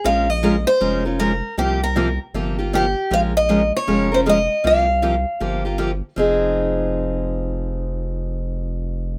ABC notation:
X:1
M:4/4
L:1/16
Q:"Swing" 1/4=157
K:Fm
V:1 name="Steel-string acoustic guitar"
f2 e4 c4 z2 B4 | G2 B4 z6 G4 | f2 e4 d4 c2 e4 | f12 z4 |
z16 | z16 |]
V:2 name="Steel-string acoustic guitar"
[F,A,DFB]2 z2 [F,A,DFB] z3 [F,A,DFB]2 [DFB]2 [F,A,DFB] z3 | [C,F,B,FG]2 z2 [C,F,B,FG] z3 [C,F,B,FG]2 [B,FG]2 [C,F,B,FG] z3 | [F,A,DFB]2 z2 [F,A,DFB] z3 [F,A,DFB]2 [DFB]2 [F,A,DFB] z3 | [C,F,B,FG]2 z2 [C,F,B,FG] z3 [C,F,B,FG]2 [B,FG]2 [C,F,B,FG] z3 |
[F,CEA]16- | [F,CEA]16 |]
V:3 name="Sub bass" clef=bass
B,,,8 F,,,8 | C,,8 G,,,8 | B,,,8 F,,,8 | C,,8 G,,,8 |
F,,,16- | F,,,16 |]